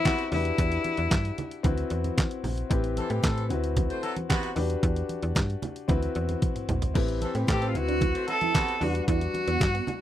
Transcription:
Already playing: C4 E4 F#4 B4
0.05 C3 B3 F#4, kick, snare, clap, closed hi-hat, muted conga, high conga
0.19 closed hi-hat
0.31 E2 D4 E4 F#4 G4 B4, open hi-hat, muted conga, low conga
0.45 closed hi-hat
0.58 E2, kick, closed hi-hat, muted conga
0.72 closed hi-hat
0.84 closed hi-hat, high conga
0.97 E2, closed hi-hat
1.11 G2, kick, snare, clap, closed hi-hat, muted conga, high conga
1.25 closed hi-hat
1.38 closed hi-hat, low conga
1.51 closed hi-hat
1.63 D2 C4 E4 F#4 B4, kick, closed hi-hat, muted conga, high conga, low conga
1.78 closed hi-hat
1.90 E2, closed hi-hat
2.04 closed hi-hat, high conga
2.18 kick, snare, clap, closed hi-hat, muted conga, high conga
2.31 closed hi-hat
2.44 A#1, open hi-hat, low conga
2.58 closed hi-hat
2.70 A1 C4 E4 G4 B4, kick, closed hi-hat
2.84 closed hi-hat
2.97 E3 C4 A4, closed hi-hat, muted conga, high conga
3.10 A2 E3 C4 G4, closed hi-hat
3.23 A2 E3 C4 A4, kick, snare, clap, closed hi-hat, high conga
3.38 closed hi-hat
3.49 D2 C4 E4 F#4 B4, closed hi-hat, low conga
3.64 closed hi-hat
3.77 kick, closed hi-hat, muted conga, high conga, low conga
3.90 A3 F#4 C5, closed hi-hat
4.03 F#3 E4 A4, closed hi-hat, muted conga
4.16 closed hi-hat, high conga
4.30 C3 B3 F#4, kick, snare, clap, closed hi-hat, muted conga, high conga
4.43 closed hi-hat
4.55 E2 D4 F#4 G4 B4, open hi-hat, low conga
4.70 closed hi-hat
4.83 E2, kick, closed hi-hat
4.96 closed hi-hat
5.09 closed hi-hat, high conga
5.23 E2, closed hi-hat
5.35 G2, kick, snare, clap, closed hi-hat, muted conga, high conga
5.50 closed hi-hat
5.62 closed hi-hat, muted conga, low conga
5.76 closed hi-hat
5.88 D2 C4 E4 F#4 B4, kick, closed hi-hat, muted conga, high conga, low conga
6.03 closed hi-hat
6.15 E2, closed hi-hat, muted conga
6.29 closed hi-hat, high conga
6.42 kick, closed hi-hat, high tom, muted conga, high conga
6.56 closed hi-hat, mid tom
6.69 A#1, closed hi-hat, mid tom, muted conga, low conga
6.82 closed hi-hat, floor tom
6.94 A1 A3 C4 E4 G4 B4, kick, crash
7.08 closed hi-hat
7.21 E3 C4 A4, muted clean electric guitar stroke, closed hi-hat, muted conga, high conga
7.35 A2 E3 C4 G4, closed hi-hat
7.47 A2 E3 C4 G4 A4, kick, snare, clap, closed hi-hat, high conga
7.62 C4, closed hi-hat
7.69 F4
7.74 D2 C4 E4 F#4 B4, muted clean electric guitar stroke, closed hi-hat, muted conga, low conga
7.88 D4, closed hi-hat
8.01 E4, kick, closed hi-hat, muted conga, high conga, low conga
8.14 A3 F#4 C5, closed hi-hat
8.28 F#3 E4 A4, muted clean electric guitar stroke, closed hi-hat, muted conga
8.41 E4, closed hi-hat, high conga
8.55 C3 B3 F#4, kick, snare, clap, closed hi-hat, high conga
8.68 closed hi-hat
8.80 E2 G3 D4 F#4 B4, open hi-hat, muted conga, low conga
8.95 closed hi-hat
9.08 E2 E4 F#4, kick, closed hi-hat, muted conga
9.21 closed hi-hat
9.34 muted clean electric guitar stroke, closed hi-hat, muted conga, high conga
9.48 E2 B3, closed hi-hat
9.60 G2, kick, snare, clap, closed hi-hat, muted conga, high conga
9.74 B3, closed hi-hat
9.87 muted clean electric guitar stroke, closed hi-hat, low conga

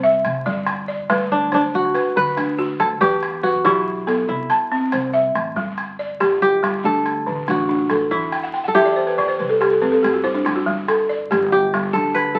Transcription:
Already playing: C2 C5
0.03 E5, calabash thump
0.25 C3, calabash click
0.35 calabash click
0.46 G1 G3 D5, calabash thump
0.67 calabash click
0.88 D5
0.99 calabash thump
1.10 D2 G3 B4, calabash click
1.21 calabash click
1.32 D4
1.42 calabash click
1.52 D4 C5, calabash thump, calabash click
1.74 D2 F#4
1.85 calabash click
1.94 B4, calabash click
2.06 calabash thump
2.16 D3 B4
2.37 D2 D4, calabash click
2.58 F#4, calabash thump
2.80 D2 A4, calabash click
2.91 calabash click
3.01 E2 E3 G4 B4, calabash thump, calabash click
3.23 calabash click
3.34 calabash click
3.43 F#4 B4, calabash click
3.55 calabash thump
3.65 B1 E3 E4 G4, calabash click
3.87 calabash click
4.07 B3 A4, calabash click
4.29 C2 E4, calabash click
4.50 A5, calabash click
4.61 calabash thump, calabash click
4.72 C4
4.92 C2 C5, calabash click
5.04 calabash click
5.14 E5, calabash thump
5.35 A1, calabash click
5.56 G1 G3, calabash thump, calabash click
5.78 calabash click
5.99 D5
6.10 calabash thump
6.20 G1 G4, calabash click
6.32 calabash click
6.42 G4, calabash click
6.63 G3, calabash thump, calabash click
6.84 D2 D4 A4, calabash click
7.06 calabash click
7.17 calabash thump
7.26 A1 D3, calabash click
7.48 A1 D4 F#4, calabash click
7.69 D4, calabash thump
7.90 A1 A4, calabash click
8.11 E2 E3 E4, calabash thump, calabash click
8.32 G5, calabash click
8.43 F#5
8.54 G5
8.64 A4 F#5, calabash thump
8.75 E2 E4 G4 E5, calabash click
8.85 D5, calabash click
8.96 C5, calabash click
9.07 B4
9.18 E3 D5, calabash thump, calabash click
9.28 C5
9.39 C2 B4, calabash click
9.49 A4
9.61 G4, calabash click
9.71 A4, calabash thump
9.82 G2 C4 B4, calabash click
9.92 A4, calabash click
10.03 G2 G4, calabash click
10.14 F#4
10.24 E4 C5, calabash thump
10.34 D4
10.45 G2 E4, calabash click
10.56 F#4
10.66 G1 G3, calabash thump, calabash click
10.88 A4, calabash click
11.09 D5
11.21 calabash thump
11.31 G1 G4, calabash click
11.42 calabash click
11.52 G4
11.74 G3, calabash thump, calabash click
11.93 D2 D4 A4, calabash click
12.15 B4, calabash click
12.27 calabash thump
12.35 A4

